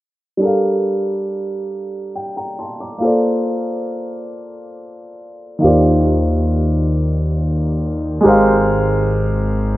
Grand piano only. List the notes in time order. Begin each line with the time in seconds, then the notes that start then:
0.37 G3 D4
0.41 A4 A#4
0.46 F5
2.16 G5
2.37 G5 A#5
2.59 A5 C6
2.80 A#5 D6
2.98 A#3 F4 A4
3.05 C5 D5
5.59 D#3 A#3 F4
5.63 G4 C5 D5
8.21 G#3 G4
8.25 A#4 C5 F5